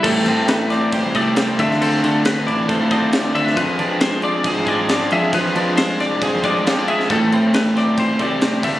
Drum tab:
CC |x-x-x-x-x-x-x-x-|x-x-x-x-x-x-x-x-|x-x-x-x-x-x-x-x-|x-x-x-x-x-x-x-x-|
SD |----o-o-----o--o|----o-------o--o|----o-------o---|----o-o-----o--o|
BD |o-------o-o---o-|--------o-o-----|o-------o-o-----|o-------o-o-----|

CC |x-x-x-x-x-x-x-x-|
SD |----o-o-----o---|
BD |o-------o-o---o-|